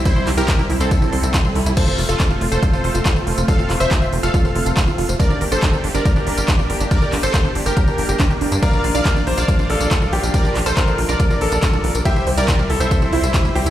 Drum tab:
CC |----------------|x---------------|----------------|----------------|
RD |x---x---x---x---|x---x---x---x---|x---x---x---x---|x---x---x---x---|
HH |x-oxx-oxx-oxx-ox|x-oxx-oxx-oxx-ox|x-oxx-oxx-oxx-ox|x-oxx-oxx-oxx-ox|
TB |xx-xxx-xxx-xxx-x|xx-xxx-xxx-xxx-x|xx-xxx-xxx-xxx-x|xx-xxx-xxx-xxx-x|
CP |--x-x-------x---|----x-------x---|--x-x-------x---|----x-------x---|
BD |o---o---o---o---|o---o---o---o---|o---o---o---o---|o---o---o---o---|

CC |----------------|----------------|----------------|----------------|
RD |x---x---x---x---|x---x---x---x---|x---x---x---x---|x---x---x---x---|
HH |x-oxx-oxx-oxx-ox|x-oxx-oxx-oxx-ox|x-o-x-oxx-oxx-ox|x-oxx-oxx-oxx-ox|
TB |xx-xxx-xxx-xxx-x|xx-xxx-xxx-xxx-x|xx-xxx-xxx-xxx-x|xx-xxx-xxx-xxx-x|
CP |--x-x-------x---|----x-------x---|--x-x-------x---|----x-------x---|
BD |o---o---o---o---|o---o---o---o---|o---o---o---o---|o---o---o---o---|